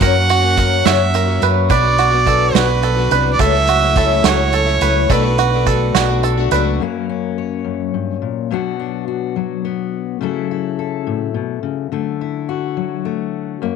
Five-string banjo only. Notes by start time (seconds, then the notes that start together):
0.02 A#4
0.30 F#4
0.59 A#4
0.86 F#4
1.15 A#4
1.43 B4
1.70 B4
1.99 F#4
2.27 A4
2.55 F#4
2.83 A4
3.12 B4
3.40 A4
3.69 F#4
3.97 A4
4.25 F#4
4.54 A4
4.82 B4
5.10 A4
5.39 F#4
5.67 A4
5.95 F#4
6.24 A4
6.52 B4